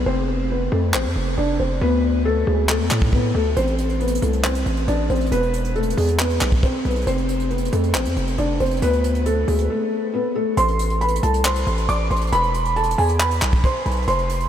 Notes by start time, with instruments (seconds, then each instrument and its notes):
0.06 808-style bass F1, felt piano C4 C5
0.50 felt piano B3 B4
0.72 808-style bass F2, felt piano A3 A4
0.94 808-style bass A1, felt piano C4 C5, clap
1.05 808-style bass F2
1.16 808-style bass F1
1.38 808-style bass F1, felt piano D4 D5
1.59 808-style bass F1, felt piano C4 C5
1.81 808-style bass D2, felt piano B3 B4
2.25 felt piano A3 A4
2.47 808-style bass D2, felt piano G#3 G#4
2.69 felt piano A3 A4, clap
2.80 808-style bass F2
2.91 808-style bass A2, clap
3.02 kick
3.13 felt piano B3 B4, kick
3.35 808-style bass D2, felt piano A3 A4
3.57 808-style bass A1, felt piano C4 C5, closed hi-hat
3.68 closed hi-hat
3.78 closed hi-hat
3.89 closed hi-hat
4.00 felt piano B3 B4, closed hi-hat
4.08 closed hi-hat
4.15 closed hi-hat
4.22 808-style bass C2, felt piano A3 A4, closed hi-hat
4.33 closed hi-hat
4.44 felt piano C4 C5, clap, closed hi-hat
4.55 closed hi-hat
4.66 808-style bass A1, closed hi-hat
4.77 closed hi-hat
4.88 808-style bass A1, felt piano D4 D5, closed hi-hat
5.10 808-style bass A1, felt piano C4 C5, closed hi-hat
5.15 closed hi-hat
5.21 closed hi-hat
5.26 closed hi-hat
5.32 808-style bass E1, felt piano B3 B4, closed hi-hat
5.43 closed hi-hat
5.54 closed hi-hat
5.65 closed hi-hat
5.76 felt piano A3 A4, closed hi-hat
5.83 closed hi-hat
5.90 closed hi-hat
5.97 808-style bass E2, felt piano G#3 G#4, open hi-hat
6.08 closed hi-hat
6.19 felt piano B3 B4, clap, closed hi-hat
6.30 closed hi-hat
6.41 808-style bass B1, clap
6.52 kick, closed hi-hat
6.63 felt piano C4 C5, kick, closed hi-hat
6.85 808-style bass B1, felt piano B3 B4, closed hi-hat
6.91 closed hi-hat
6.96 closed hi-hat
7.01 closed hi-hat
7.07 808-style bass F1, felt piano C4 C5, closed hi-hat
7.18 closed hi-hat
7.29 closed hi-hat
7.40 closed hi-hat
7.51 felt piano B3 B4, closed hi-hat
7.58 closed hi-hat
7.65 closed hi-hat
7.73 808-style bass F2, felt piano A3 A4, closed hi-hat
7.84 closed hi-hat
7.95 808-style bass A1, felt piano C4 C5, clap, closed hi-hat
8.05 808-style bass F2, closed hi-hat
8.16 808-style bass F1, closed hi-hat
8.27 closed hi-hat
8.38 808-style bass F1, felt piano D4 D5, closed hi-hat
8.60 808-style bass F1, felt piano C4 C5, closed hi-hat
8.66 closed hi-hat
8.71 closed hi-hat
8.77 closed hi-hat
8.82 808-style bass D2, felt piano B3 B4, closed hi-hat
8.93 closed hi-hat
9.04 closed hi-hat
9.15 closed hi-hat
9.26 felt piano A3 A4, closed hi-hat
9.48 808-style bass D2, felt piano G#3 G#4, open hi-hat
9.59 closed hi-hat
9.70 felt piano A3 A4
10.14 felt piano B3 B4
10.35 felt piano A3 A4
10.57 808-style bass A1, felt piano C5 C6, closed hi-hat
10.68 closed hi-hat
10.79 closed hi-hat
10.90 closed hi-hat
11.01 felt piano B4 B5, closed hi-hat
11.08 closed hi-hat
11.16 closed hi-hat
11.23 808-style bass C2, felt piano A4 A5, closed hi-hat
11.34 closed hi-hat
11.45 felt piano C5 C6, clap, closed hi-hat
11.56 closed hi-hat
11.67 808-style bass A1, closed hi-hat
11.78 closed hi-hat
11.89 808-style bass A1, felt piano D5 D6, closed hi-hat
12.11 808-style bass A1, felt piano C5 C6, closed hi-hat
12.16 closed hi-hat
12.22 closed hi-hat
12.27 closed hi-hat
12.32 808-style bass E1, felt piano B4 B5, closed hi-hat
12.43 closed hi-hat
12.54 closed hi-hat
12.65 closed hi-hat
12.76 felt piano A4 A5, closed hi-hat
12.84 closed hi-hat
12.91 closed hi-hat
12.98 808-style bass E2, felt piano G#4 G#5, open hi-hat
13.09 closed hi-hat
13.20 felt piano B4 B5, clap, closed hi-hat
13.31 closed hi-hat
13.42 808-style bass B1, clap
13.53 kick, closed hi-hat
13.64 felt piano C5 C6, kick, closed hi-hat
13.86 808-style bass B1, felt piano B4 B5, closed hi-hat
13.91 closed hi-hat
13.97 closed hi-hat
14.02 closed hi-hat
14.08 808-style bass F1, felt piano C5 C6, closed hi-hat
14.19 closed hi-hat
14.30 closed hi-hat
14.41 closed hi-hat